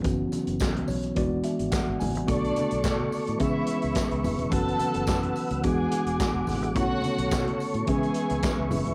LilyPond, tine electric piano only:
<<
  \new Staff \with { instrumentName = "Tine electric piano" } { \time 4/4 \key b \dorian \tempo 4 = 107 r4. cis''8 d''8 e''8 fis''8 gis''8 | r1 | r1 | r1 | }
  \new Staff \with { instrumentName = "Tine electric piano" } { \time 4/4 \key b \dorian <e fis b cis' fis'>2 <e gis b d' fis'>2 | <cis d a b d' fis'>2 <e gis b cis' gis'>2 | <e fis a b cis' fis'>2 <e fis gis b d' fis'>2 | <d a b cis' e' fis'>2 <e gis b cis' gis'>2 | }
>>